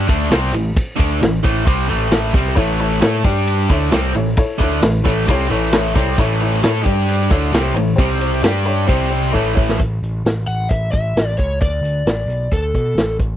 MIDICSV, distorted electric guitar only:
0, 0, Header, 1, 2, 480
1, 0, Start_track
1, 0, Tempo, 452148
1, 805, Time_signature, 4, 2, 24, 8
1, 14190, End_track
2, 0, Start_track
2, 0, Title_t, "Distorted electric guitar"
2, 0, Program_c, 0, 30
2, 82, Note_on_c, 0, 50, 89
2, 88, Note_on_c, 0, 57, 98
2, 96, Note_on_c, 0, 62, 88
2, 317, Note_off_c, 0, 50, 0
2, 320, Note_off_c, 0, 57, 0
2, 321, Note_on_c, 0, 48, 83
2, 324, Note_off_c, 0, 62, 0
2, 325, Note_on_c, 0, 55, 82
2, 334, Note_on_c, 0, 60, 94
2, 556, Note_off_c, 0, 48, 0
2, 558, Note_off_c, 0, 55, 0
2, 562, Note_off_c, 0, 60, 0
2, 566, Note_on_c, 0, 45, 58
2, 576, Note_on_c, 0, 52, 71
2, 757, Note_off_c, 0, 45, 0
2, 762, Note_off_c, 0, 52, 0
2, 1022, Note_on_c, 0, 50, 89
2, 1033, Note_on_c, 0, 57, 90
2, 1043, Note_on_c, 0, 62, 86
2, 1265, Note_off_c, 0, 50, 0
2, 1271, Note_off_c, 0, 57, 0
2, 1276, Note_off_c, 0, 62, 0
2, 1292, Note_on_c, 0, 45, 61
2, 1299, Note_on_c, 0, 52, 70
2, 1479, Note_off_c, 0, 45, 0
2, 1483, Note_off_c, 0, 52, 0
2, 1523, Note_on_c, 0, 52, 91
2, 1524, Note_on_c, 0, 45, 88
2, 1532, Note_on_c, 0, 57, 91
2, 1755, Note_off_c, 0, 45, 0
2, 1755, Note_off_c, 0, 52, 0
2, 1759, Note_on_c, 0, 48, 95
2, 1760, Note_off_c, 0, 57, 0
2, 1769, Note_on_c, 0, 55, 99
2, 1782, Note_on_c, 0, 60, 103
2, 1993, Note_off_c, 0, 48, 0
2, 1998, Note_off_c, 0, 55, 0
2, 2000, Note_on_c, 0, 45, 84
2, 2004, Note_off_c, 0, 60, 0
2, 2013, Note_on_c, 0, 57, 94
2, 2018, Note_on_c, 0, 52, 91
2, 2473, Note_off_c, 0, 45, 0
2, 2479, Note_off_c, 0, 57, 0
2, 2481, Note_off_c, 0, 52, 0
2, 2488, Note_on_c, 0, 48, 77
2, 2494, Note_on_c, 0, 55, 86
2, 2500, Note_on_c, 0, 60, 100
2, 2717, Note_off_c, 0, 48, 0
2, 2719, Note_off_c, 0, 55, 0
2, 2722, Note_off_c, 0, 60, 0
2, 2733, Note_on_c, 0, 45, 85
2, 2740, Note_on_c, 0, 52, 83
2, 2747, Note_on_c, 0, 57, 90
2, 3184, Note_off_c, 0, 57, 0
2, 3193, Note_off_c, 0, 52, 0
2, 3197, Note_on_c, 0, 57, 88
2, 3199, Note_off_c, 0, 45, 0
2, 3201, Note_on_c, 0, 64, 87
2, 3216, Note_on_c, 0, 69, 93
2, 3431, Note_off_c, 0, 57, 0
2, 3433, Note_off_c, 0, 64, 0
2, 3440, Note_off_c, 0, 69, 0
2, 3446, Note_on_c, 0, 55, 80
2, 3449, Note_on_c, 0, 62, 81
2, 3457, Note_on_c, 0, 67, 97
2, 3915, Note_off_c, 0, 55, 0
2, 3916, Note_off_c, 0, 62, 0
2, 3917, Note_on_c, 0, 50, 79
2, 3920, Note_off_c, 0, 67, 0
2, 3929, Note_on_c, 0, 57, 92
2, 3931, Note_on_c, 0, 62, 93
2, 4149, Note_off_c, 0, 50, 0
2, 4154, Note_on_c, 0, 48, 90
2, 4156, Note_off_c, 0, 57, 0
2, 4157, Note_off_c, 0, 62, 0
2, 4170, Note_on_c, 0, 60, 92
2, 4172, Note_on_c, 0, 55, 98
2, 4389, Note_off_c, 0, 48, 0
2, 4397, Note_off_c, 0, 60, 0
2, 4398, Note_off_c, 0, 55, 0
2, 4401, Note_on_c, 0, 45, 59
2, 4403, Note_on_c, 0, 52, 76
2, 4591, Note_off_c, 0, 45, 0
2, 4592, Note_off_c, 0, 52, 0
2, 4867, Note_on_c, 0, 50, 85
2, 4878, Note_on_c, 0, 57, 91
2, 4891, Note_on_c, 0, 62, 89
2, 5105, Note_off_c, 0, 50, 0
2, 5110, Note_off_c, 0, 57, 0
2, 5117, Note_off_c, 0, 62, 0
2, 5118, Note_on_c, 0, 52, 70
2, 5121, Note_on_c, 0, 45, 66
2, 5310, Note_off_c, 0, 52, 0
2, 5311, Note_off_c, 0, 45, 0
2, 5349, Note_on_c, 0, 45, 77
2, 5358, Note_on_c, 0, 52, 90
2, 5363, Note_on_c, 0, 57, 95
2, 5584, Note_off_c, 0, 45, 0
2, 5588, Note_on_c, 0, 48, 89
2, 5590, Note_off_c, 0, 52, 0
2, 5593, Note_off_c, 0, 57, 0
2, 5594, Note_on_c, 0, 55, 91
2, 5602, Note_on_c, 0, 60, 102
2, 5822, Note_off_c, 0, 48, 0
2, 5826, Note_on_c, 0, 45, 80
2, 5828, Note_off_c, 0, 55, 0
2, 5832, Note_off_c, 0, 60, 0
2, 5836, Note_on_c, 0, 52, 90
2, 5844, Note_on_c, 0, 57, 96
2, 6305, Note_off_c, 0, 45, 0
2, 6306, Note_off_c, 0, 52, 0
2, 6309, Note_on_c, 0, 48, 82
2, 6310, Note_on_c, 0, 55, 90
2, 6313, Note_off_c, 0, 57, 0
2, 6323, Note_on_c, 0, 60, 96
2, 6546, Note_off_c, 0, 48, 0
2, 6546, Note_off_c, 0, 55, 0
2, 6553, Note_off_c, 0, 60, 0
2, 6562, Note_on_c, 0, 45, 89
2, 6566, Note_on_c, 0, 52, 97
2, 6577, Note_on_c, 0, 57, 92
2, 7026, Note_off_c, 0, 57, 0
2, 7032, Note_off_c, 0, 45, 0
2, 7034, Note_off_c, 0, 52, 0
2, 7038, Note_on_c, 0, 64, 92
2, 7039, Note_on_c, 0, 57, 93
2, 7056, Note_on_c, 0, 69, 93
2, 7258, Note_off_c, 0, 57, 0
2, 7258, Note_on_c, 0, 55, 81
2, 7266, Note_off_c, 0, 64, 0
2, 7266, Note_on_c, 0, 62, 86
2, 7277, Note_off_c, 0, 69, 0
2, 7277, Note_on_c, 0, 67, 94
2, 7740, Note_off_c, 0, 55, 0
2, 7744, Note_off_c, 0, 62, 0
2, 7749, Note_on_c, 0, 50, 92
2, 7750, Note_off_c, 0, 67, 0
2, 7756, Note_on_c, 0, 57, 85
2, 7760, Note_on_c, 0, 62, 96
2, 7986, Note_off_c, 0, 50, 0
2, 7989, Note_off_c, 0, 57, 0
2, 7991, Note_off_c, 0, 62, 0
2, 7995, Note_on_c, 0, 48, 87
2, 7995, Note_on_c, 0, 55, 94
2, 8008, Note_on_c, 0, 60, 104
2, 8229, Note_off_c, 0, 48, 0
2, 8229, Note_off_c, 0, 55, 0
2, 8235, Note_off_c, 0, 60, 0
2, 8243, Note_on_c, 0, 52, 64
2, 8245, Note_on_c, 0, 45, 64
2, 8432, Note_off_c, 0, 52, 0
2, 8433, Note_off_c, 0, 45, 0
2, 8485, Note_on_c, 0, 48, 80
2, 8490, Note_on_c, 0, 55, 87
2, 8498, Note_on_c, 0, 60, 93
2, 8939, Note_off_c, 0, 55, 0
2, 8952, Note_on_c, 0, 55, 82
2, 8954, Note_off_c, 0, 48, 0
2, 8956, Note_off_c, 0, 60, 0
2, 8960, Note_on_c, 0, 62, 95
2, 8965, Note_on_c, 0, 67, 90
2, 9410, Note_on_c, 0, 48, 94
2, 9413, Note_off_c, 0, 55, 0
2, 9426, Note_off_c, 0, 62, 0
2, 9426, Note_on_c, 0, 55, 86
2, 9430, Note_on_c, 0, 60, 107
2, 9434, Note_off_c, 0, 67, 0
2, 9897, Note_off_c, 0, 48, 0
2, 9901, Note_on_c, 0, 45, 78
2, 9905, Note_off_c, 0, 55, 0
2, 9907, Note_off_c, 0, 60, 0
2, 9910, Note_on_c, 0, 52, 88
2, 9919, Note_on_c, 0, 57, 101
2, 10383, Note_off_c, 0, 45, 0
2, 10387, Note_off_c, 0, 52, 0
2, 10391, Note_off_c, 0, 57, 0
2, 14190, End_track
0, 0, End_of_file